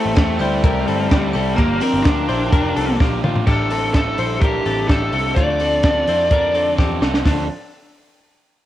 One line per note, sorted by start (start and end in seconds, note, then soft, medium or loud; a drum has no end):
0.00 0.14 A3 medium
0.00 0.15 C4 medium
0.00 0.38 C4 medium
0.00 0.15 E4 medium
0.00 0.17 G4 medium
0.00 0.38 A4 medium
0.00 1.55 A4 medium
0.00 1.56 E5 medium
0.00 3.43 G5 medium
0.00 0.14 A5 medium
0.00 1.55 C6 medium
0.06 0.16 A1 loud
0.15 0.37 E2 loud
0.15 0.40 A3 medium
0.15 0.40 C4 medium
0.15 0.39 E4 medium
0.15 0.37 G4 medium
0.15 0.38 A5 medium
0.15 kick loud
0.15 snare loud
0.15 hi-hat pedal medium
0.15 ride medium
0.39 0.61 D2 loud
0.39 1.32 G3 loud
0.39 0.63 C4 medium
0.39 0.63 E4 medium
0.39 0.64 E4 medium
0.39 0.63 G4 medium
0.39 0.64 C5 medium
0.39 1.30 G5 medium
0.39 open hi-hat medium
0.63 0.84 C2 loud
0.63 1.09 A3 medium
0.63 1.09 C4 medium
0.63 1.10 E4 medium
0.63 0.88 E4 medium
0.63 1.11 G4 medium
0.63 0.87 A#4 medium
0.63 kick loud
0.63 hi-hat pedal medium
0.63 ride medium
0.87 1.08 G1 medium
0.87 1.11 C4 medium
0.87 1.11 A4 medium
0.87 open hi-hat medium
1.10 1.31 D2 loud
1.10 1.34 A3 medium
1.10 1.35 C4 loud
1.10 1.35 C4 medium
1.10 1.34 E4 loud
1.10 1.35 G4 medium
1.10 1.33 G4 loud
1.10 kick loud
1.10 snare loud
1.10 hi-hat pedal medium
1.10 ride medium
1.33 1.55 C2 medium
1.33 1.55 G3 medium
1.33 1.59 C4 medium
1.33 1.57 C4 soft
1.33 1.58 E4 medium
1.33 1.57 G4 medium
1.33 1.59 A4 medium
1.33 1.56 G5 medium
1.33 open hi-hat medium
1.57 1.78 G1 loud
1.57 2.03 G2 medium
1.57 2.05 D3 medium
1.57 2.04 F3 medium
1.57 2.05 A#3 medium
1.57 1.83 A#3 medium
1.57 2.06 D4 medium
1.57 2.06 G4 medium
1.57 1.82 G4 loud
1.57 3.45 A#4 medium
1.57 3.45 F5 medium
1.57 1.79 A#5 medium
1.57 3.45 D6 loud
1.57 kick medium
1.57 hi-hat pedal medium
1.57 ride medium
1.80 2.03 C4 loud
1.80 2.27 D4 medium
1.80 2.27 A#4 loud
1.80 2.03 C6 medium
1.80 open hi-hat medium
1.94 2.04 G1 loud
2.04 2.26 D2 loud
2.04 2.29 G2 medium
2.04 2.29 D3 medium
2.04 2.29 F3 medium
2.04 2.29 A#3 medium
2.04 2.28 D4 medium
2.04 2.27 G4 loud
2.04 2.95 D6 medium
2.04 kick loud
2.04 snare loud
2.04 hi-hat pedal medium
2.04 ride medium
2.28 2.49 A#1 medium
2.28 2.51 F3 medium
2.28 2.52 A#3 medium
2.28 2.52 D4 medium
2.28 2.53 E4 medium
2.28 2.52 G4 medium
2.28 2.53 C5 medium
2.28 open hi-hat medium
2.52 2.73 F1 loud
2.52 2.99 F3 medium
2.52 2.99 A#3 medium
2.52 3.00 D4 medium
2.52 2.77 D4 medium
2.52 3.00 G4 medium
2.52 2.76 A#4 medium
2.52 kick loud
2.52 hi-hat pedal medium
2.52 ride medium
2.76 2.96 C2 medium
2.76 3.00 C4 medium
2.76 3.00 A4 medium
2.76 open hi-hat medium
2.99 3.20 A#1 loud
2.99 3.23 G2 medium
2.99 3.23 D3 medium
2.99 3.24 F3 loud
2.99 3.23 A#3 loud
2.99 3.24 A#3 medium
2.99 3.22 D4 medium
2.99 3.24 G4 medium
2.99 3.21 G4 loud
2.99 kick loud
2.99 snare medium
3.22 3.44 A1 medium
3.22 3.46 F3 soft
3.22 3.48 A3 medium
3.22 3.46 A#3 medium
3.22 3.45 D4 medium
3.22 3.47 F4 medium
3.22 3.47 G4 medium
3.22 mid tom medium
3.36 floor tom medium
3.46 4.15 A1 loud
3.46 3.94 A2 medium
3.46 3.98 D3 medium
3.46 3.92 G3 medium
3.46 3.94 D4 medium
3.46 3.72 D4 medium
3.46 3.94 E4 medium
3.46 3.71 G4 loud
3.46 3.95 A4 medium
3.46 kick medium
3.46 crash medium
3.71 4.16 C4 medium
3.71 4.16 A4 medium
3.71 open hi-hat medium
3.93 4.41 G3 medium
3.93 4.42 D4 medium
3.93 4.41 E4 medium
3.93 4.42 A4 medium
3.93 kick loud
3.93 snare loud
3.93 closed hi-hat medium
4.18 4.59 A#1 medium
4.18 4.43 E4 medium
4.18 4.42 C5 medium
4.18 open hi-hat medium
4.41 4.89 A2 medium
4.41 4.93 D3 medium
4.41 4.87 G3 medium
4.41 4.89 D4 medium
4.41 4.66 D4 medium
4.41 4.89 E4 loud
4.41 4.88 G4 medium
4.41 4.90 A4 medium
4.41 4.66 A#4 medium
4.41 kick loud
4.41 closed hi-hat medium
4.66 4.86 A1 loud
4.66 4.90 C4 medium
4.66 4.89 A4 medium
4.66 open hi-hat medium
4.88 5.09 A1 loud
4.88 5.12 G3 medium
4.88 5.13 D4 medium
4.88 5.12 E4 medium
4.88 5.13 G4 medium
4.88 5.11 A4 medium
4.88 kick loud
4.88 snare loud
4.88 closed hi-hat medium
5.12 5.33 C2 medium
5.12 5.36 G3 soft
5.12 5.37 C4 medium
5.12 5.35 D4 soft
5.12 5.36 E4 soft
5.12 5.36 A4 soft
5.12 5.37 A4 medium
5.12 open hi-hat medium
5.35 6.04 D2 loud
5.35 5.86 D3 medium
5.35 5.81 F3 medium
5.35 5.61 A3 medium
5.35 5.82 C4 medium
5.35 5.83 D4 medium
5.35 5.60 F4 loud
5.35 5.84 A4 medium
5.35 6.73 D5 loud
5.35 kick medium
5.35 closed hi-hat medium
5.60 6.05 C4 medium
5.60 6.05 A4 medium
5.60 open hi-hat medium
5.82 6.06 F3 medium
5.82 6.07 C4 medium
5.82 6.06 D4 medium
5.82 6.05 A4 medium
5.82 kick loud
5.82 snare loud
5.82 closed hi-hat medium
6.06 6.75 F2 medium
6.06 6.29 C4 soft
6.06 6.29 D4 medium
6.06 6.32 E4 medium
6.06 6.30 A4 medium
6.06 6.31 C5 medium
6.06 open hi-hat medium
6.29 6.80 D3 medium
6.29 6.76 F3 loud
6.29 6.77 C4 medium
6.29 6.78 D4 loud
6.29 6.55 D4 medium
6.29 6.78 A4 loud
6.29 6.55 A#4 medium
6.29 kick loud
6.29 closed hi-hat medium
6.55 6.78 C4 medium
6.55 6.78 A4 medium
6.55 open hi-hat medium
6.76 6.98 E2 medium
6.76 7.01 F3 medium
6.76 7.01 C4 medium
6.76 7.02 C4 medium
6.76 7.01 D4 medium
6.76 7.02 G4 medium
6.76 7.00 A4 medium
6.76 kick loud
6.76 snare medium
7.01 7.22 C2 medium
7.01 7.26 C4 medium
7.01 7.24 C4 soft
7.01 7.25 D4 soft
7.01 7.25 A4 medium
7.01 snare medium
7.14 snare medium
7.24 7.47 D2 loud
7.24 7.44 D3 medium
7.24 7.44 F3 medium
7.24 7.44 C4 medium
7.24 7.48 D4 loud
7.24 7.45 D4 medium
7.24 7.45 A4 medium
7.24 kick medium
7.24 snare medium
7.24 open hi-hat medium